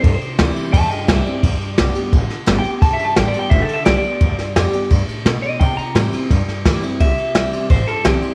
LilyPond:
<<
  \new Staff \with { instrumentName = "Clean electric guitar" } { \time 4/4 \key c \major \tempo 4 = 172 \tuplet 3/2 { a'8 c''8. r16 } r4 <e'' a''>8 <ees'' g''>8 <c'' e''>8 d''8~ | d''2~ d''8 r8 \tuplet 3/2 { r8 g''8 r8 } | \tuplet 3/2 { a''8 e''8 a''8 g''8 d''8 g''8 e''8 a'8 e''8 d''8 d''4~ } | d''2~ d''8 r4 ees''8 |
g''8 bes''8 c'''4 r2 | e''2 c''8 a'8 g'4 | }
  \new Staff \with { instrumentName = "Steel-string acoustic guitar" } { \time 4/4 \key c \major << { r4 <e g c' e'>4 r4 <e g c' e'>8 <c' e'>8 | r4 <d g b g'>8 <b g'>8 r4 <d g b g'>8 <b g'>8 | r4 <d g b g'>8 <b g'>8 r4 <d g b g'>8 <b g'>8 | r4 <d g b g'>8 <b g'>8 r2 |
r4 <e g c' e'>8 <c' e'>8 r4 <e g c' e'>8 <c' e'>8 | r4 <e g c' e'>4 r4 <e g c' e'>8 <c' e'>8 | } \\ { c2 g,2 | g,2 d2 | g,2 d2 | g,2 a,4 b,4 |
c2 g,2 | c2 g,2 | } >> }
  \new Staff \with { instrumentName = "Upright bass" } { \clef bass \time 4/4 \key c \major g,8 r8 d,8 r8 e,8 r8 c,8 r8 | d,8 r8 b,,8 r8 a,,8 r8 g,,8 r8 | b,,8 r8 a,,8 r8 g,,8 r8 b,,8 r8 | d,8 r8 f,8 r8 g,8 r8 b,8 r8 |
c8 r8 a,8 r8 g,8 r8 d,8 r8 | c,8 r8 b,,8 r8 a,,8 r8 b,,8 r8 | }
  \new DrumStaff \with { instrumentName = "Drums" } \drummode { \time 4/4 <bd cymr>8 cymr8 <cymr sn>8 cymr8 <bd cymr>8 cymr8 <bd cymr sn>8 cymr8 | <bd cymr>8 cymr8 <cymr sn>8 cymr8 <bd cymr>8 <cymr sn>8 <cymr sn>8 cymr8 | <bd cymr>8 cymr8 <cymr sn>8 cymr8 <bd cymr>8 cymr8 <cymr sn>8 cymr8 | <bd cymr>8 <cymr sn>8 <cymr sn>8 cymr8 <bd cymr>8 cymr8 <cymr sn>8 cymr8 |
<bd cymr>8 cymr8 <cymr sn>8 cymr8 <bd cymr sn>8 <cymr sn>8 <bd cymr sn>8 cymr8 | <bd cymr>8 cymr8 <cymr sn>8 cymr8 <bd cymr>8 cymr8 <cymr sn>8 cymr8 | }
>>